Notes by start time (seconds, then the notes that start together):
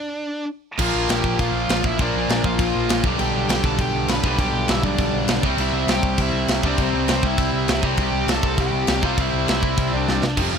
Already playing: D4 D5
0.79 A#1 A#2 F3 A#3 D4 F4 F5, kick, crash
0.94 A#1
1.09 A#1 G4 G5, snare, crash
1.24 A#1, kick
1.38 A#1 A#2 F3 A#3 D4 F4 F5, kick, crash
1.53 A#1
1.69 A#1, snare, crash
1.84 A#1 E4 E5, kick
1.99 A#1 A#2 F3 A#3 D4 D5, kick, crash
2.14 A#1
2.28 A#1 D4 D5, snare, crash
2.43 A#1 F4 F5, kick
2.58 A#1 A#2 F3 A#3 D4, kick, crash
2.75 A#1
2.89 A#1, snare, crash
3.04 B1 G2 B2 D3 G3 B3 D4, kick
3.19 B1 G4 G5, crash
3.35 B1
3.48 B1 G4 G5, snare, crash
3.64 B1 B2 G3 B3 D4 A4 A5, kick
3.78 B1 G4 G5, kick, crash
3.93 B1
4.08 B1 B4 B5, snare, crash
4.24 B1 G2 B2 D3 G3 B3 D4, kick
4.39 B1 G4 G5, kick, crash
4.53 B1
4.68 B1 E4 E5, snare, crash
4.83 B1 B2 G3 B3 D4 D5, kick
4.98 B1, kick, crash
5.13 B1
5.27 B1, snare, crash
5.42 C2 C3 G3 C4 E4, kick
5.57 C2 E4, crash
5.63 E5
5.72 C2
5.87 C2 G4, snare, crash
5.91 G5
6.03 C2 C3 G3 C4 E4, kick
6.18 C2 E4, kick, crash
6.22 E5
6.33 C2
6.47 C2, snare, crash
6.63 C2 C3 G3 C4 D4 E4, kick
6.68 D5
6.78 C2 C4, kick, crash
6.83 C5
6.93 C2
7.08 C2 C4, snare, crash
7.13 C5
7.22 C2 C3 G3 C4 E4, kick
7.27 E5
7.38 C2, kick, crash
7.53 C2
7.68 C2, snare, crash
7.82 C2 C3 G3 C4 E4, kick
7.97 C2 G4 G5, kick, crash
8.12 C2
8.27 C2 A4, snare, crash
8.33 A5
8.43 C2 C3 G3 C4 E4, kick
8.58 C2 G4 G5, kick, crash
8.72 C2
8.87 C2, snare, crash
9.02 C2 C3 G3 C4 E4 F4 F5, kick
9.18 C2 E4 E5, kick, crash
9.33 C2
9.48 C2, snare, crash
9.61 C2 C3 G3 C4 E4, kick
9.78 C2, kick, crash
9.93 C2 D4 D5
10.08 C2, snare
10.23 C2, snare
10.37 F1 F2 C3 F3 G3 A3 C4 F4, kick, crash
10.41 G4
10.52 F1 F2 C3 F3